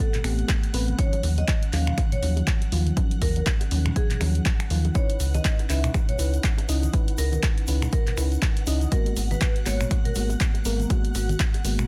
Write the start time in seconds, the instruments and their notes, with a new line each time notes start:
Already playing: fm electric piano A3 B3 C4 G4, string machine F#5 F#6
0.00 vibraphone A4
0.14 clap, closed hi-hat, high bongo, low conga
0.24 analog synth bass A1, fm electric piano A3 B3 C4 G4, finger snap, open hi-hat
0.39 closed hi-hat
0.48 kick, clap, closed hi-hat, high bongo
0.63 closed hi-hat
0.73 analog synth bass A1, fm electric piano A3 B3 C4 B4, open hi-hat, high bongo
0.88 closed hi-hat, high conga
0.98 fm electric piano D#3 F3 F#3 C#4, vibraphone C#5, kick, closed hi-hat
1.13 closed hi-hat, high bongo
1.23 analog synth bass D#2, open hi-hat
1.38 vibraphone D#5, closed hi-hat, high bongo, high conga
1.48 kick, clap, closed hi-hat
1.63 closed hi-hat
1.73 analog synth bass D#2, fm electric piano D#3 F3 F#3 C#4, vibraphone F5, clap, open hi-hat, high bongo, high conga
1.87 finger snap, low conga
1.98 finger snap, kick, closed hi-hat, high bongo
2.12 vibraphone C#5, closed hi-hat, low conga
2.22 analog synth bass D#2, fm electric piano D#3 F3 F#3 C#4, open hi-hat
2.37 closed hi-hat, high bongo
2.47 kick, clap, closed hi-hat
2.61 closed hi-hat, high bongo
2.72 analog synth bass D#2, fm electric piano D#3 F3 F#3 F4, open hi-hat
2.86 closed hi-hat, high conga
2.96 fm electric piano D#3 F3 F#3 C#4, kick, closed hi-hat, high bongo
3.11 closed hi-hat
3.22 analog synth bass D#2, vibraphone A#4, kick, open hi-hat, high bongo
3.36 closed hi-hat, high conga
3.46 kick, clap, closed hi-hat
3.61 closed hi-hat, high bongo
3.71 analog synth bass D#2, fm electric piano D#3 F3 F#3 C#4, open hi-hat, high conga
3.86 finger snap, closed hi-hat, high bongo, low conga
3.96 vibraphone G#4, kick, closed hi-hat
4.10 clap, closed hi-hat, low conga
4.20 analog synth bass D#2, fm electric piano D#3 F3 F#3 C#4, finger snap, open hi-hat, high bongo
4.35 closed hi-hat
4.45 kick, clap, closed hi-hat, high bongo
4.60 finger snap, closed hi-hat
4.70 analog synth bass D#2, fm electric piano D#3 F3 F#3 F4, open hi-hat
4.85 closed hi-hat, high bongo, high conga
4.94 fm electric piano C#4 D#4 E4 B4, vibraphone C#5, string machine F#5 F#6, kick, closed hi-hat, high bongo, shaker
5.10 closed hi-hat
5.20 analog synth bass C#2, open hi-hat, shaker
5.34 vibraphone D#5, closed hi-hat, high bongo, high conga, shaker
5.45 kick, clap, closed hi-hat, shaker
5.59 closed hi-hat, high bongo
5.69 analog synth bass C#2, fm electric piano C#4 D#4 E4 B4, vibraphone E5, clap, open hi-hat, high conga, shaker
5.84 finger snap, closed hi-hat, low conga, shaker
5.94 finger snap, kick, closed hi-hat, high bongo, shaker
6.09 vibraphone C#5, closed hi-hat, low conga
6.18 analog synth bass C#2, fm electric piano C#4 D#4 E4 B4, open hi-hat, high bongo, shaker
6.33 closed hi-hat, shaker
6.43 kick, clap, closed hi-hat, shaker
6.58 closed hi-hat, high bongo
6.68 analog synth bass C#2, fm electric piano C#4 D#4 E4 D#5, open hi-hat, shaker
6.82 closed hi-hat, high bongo, high conga, shaker
6.93 fm electric piano C#4 D#4 E4 B4, kick, closed hi-hat, shaker
7.08 closed hi-hat
7.18 analog synth bass C#2, vibraphone A#4, open hi-hat, high bongo, shaker
7.32 closed hi-hat, high conga, shaker
7.43 kick, clap, closed hi-hat, high bongo, shaker
7.58 closed hi-hat
7.67 analog synth bass C#2, fm electric piano C#4 D#4 E4 B4, open hi-hat, high conga, shaker
7.82 finger snap, high bongo, low conga, shaker
7.92 vibraphone A#4, kick, closed hi-hat, shaker
8.07 clap, closed hi-hat, high bongo, low conga
8.17 analog synth bass C#2, fm electric piano C#4 D#4 E4 B4, finger snap, open hi-hat, shaker
8.32 closed hi-hat, shaker
8.42 kick, clap, closed hi-hat, high bongo, shaker
8.57 closed hi-hat
8.67 analog synth bass C#2, fm electric piano C#4 D#4 E4 D#5, open hi-hat, high bongo, shaker
8.81 closed hi-hat, high conga, shaker
8.91 fm electric piano G#3 A#3 B3 F#4, vibraphone A#4, kick, closed hi-hat, shaker
9.06 closed hi-hat, high bongo
9.17 analog synth bass G#1, open hi-hat, shaker
9.31 vibraphone B4, closed hi-hat, high bongo, high conga, shaker
9.41 kick, clap, closed hi-hat, shaker
9.56 closed hi-hat
9.66 analog synth bass G#1, fm electric piano G#3 A#3 B3 F#4, vibraphone C#5, clap, open hi-hat, high bongo, high conga, shaker
9.80 finger snap, closed hi-hat, low conga, shaker
9.90 finger snap, kick, closed hi-hat, high bongo, shaker
10.05 vibraphone A#4, closed hi-hat, low conga
10.15 analog synth bass G#1, fm electric piano G#3 A#3 B3 F#4, open hi-hat, shaker
10.29 closed hi-hat, high bongo, shaker
10.40 kick, clap, closed hi-hat, shaker
10.54 closed hi-hat, high bongo
10.65 analog synth bass G#1, fm electric piano G#3 A#3 B3 A#4, open hi-hat, shaker
10.79 closed hi-hat, high conga, shaker
10.89 fm electric piano G#3 B3 F#4, kick, closed hi-hat, high bongo, shaker
11.05 closed hi-hat
11.14 analog synth bass G#1, vibraphone F#4, open hi-hat, high bongo, shaker
11.29 closed hi-hat, high conga, shaker
11.40 kick, clap, closed hi-hat, shaker
11.54 closed hi-hat, high bongo
11.64 analog synth bass G#1, fm electric piano G#3 A#3 B3 F#4, open hi-hat, high conga, shaker
11.79 finger snap, high bongo, low conga, shaker